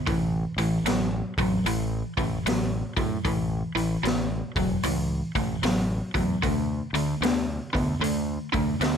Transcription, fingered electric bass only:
0.07 0.44 A1 medium
0.57 0.77 A1 medium
0.84 1.22 A1 medium
1.38 1.58 A1 medium
1.65 2.02 A1 medium
2.17 2.37 A1 medium
2.45 2.82 A1 medium
2.97 3.17 A2 medium
3.25 3.62 A1 medium
3.75 3.96 A1 medium
4.04 4.41 A1 medium
4.55 4.76 E1 medium
4.84 5.21 C#2 medium
5.35 5.55 A1 medium
5.62 5.99 A1 medium
6.15 6.35 E2 medium
6.43 6.80 D2 medium
6.93 7.14 D2 medium
7.21 7.58 D2 medium
7.74 7.95 D2 medium
8.00 8.37 D2 medium
8.54 8.74 D2 medium
8.80 8.97 D2 medium

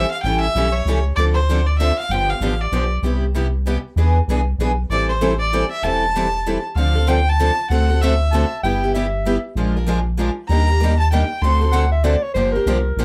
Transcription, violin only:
0.11 0.22 F5 medium
0.23 0.40 G5 medium
0.41 0.74 E5 medium
0.72 1.04 C#5 medium
1.16 1.25 D5 medium
1.34 1.68 C5 medium
1.67 1.78 D5 medium
1.79 1.96 E5 medium
1.99 2.13 F5 medium
2.11 2.32 G5 medium
2.30 2.62 F5 medium
2.61 2.92 D5 medium
4.91 5.08 D5 medium
5.09 5.38 C5 medium
5.39 5.68 D5 medium
5.71 5.85 E5 medium
5.84 6.64 A5 loud
6.77 7.09 F5 medium
7.08 7.31 G5 medium
7.29 7.70 A5 loud
7.71 8.03 F#5 medium
8.02 8.51 E5 medium
10.48 10.95 A#5 medium
11.00 11.11 A5 medium
11.13 11.44 G5 medium
11.42 11.73 C6 medium

